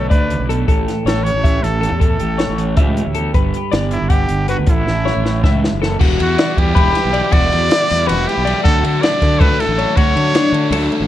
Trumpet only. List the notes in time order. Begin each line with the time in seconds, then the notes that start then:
0.10 B4
1.07 A4
1.24 C#5
1.63 A4
2.02 A4
3.92 E4
4.09 G4
4.49 F#4
4.70 E4
6.22 F#4
6.59 G4
7.33 D5
8.08 F#4
8.27 G4
8.64 A4
8.86 A4
9.02 D5
9.40 B4
9.60 A4
9.97 C#5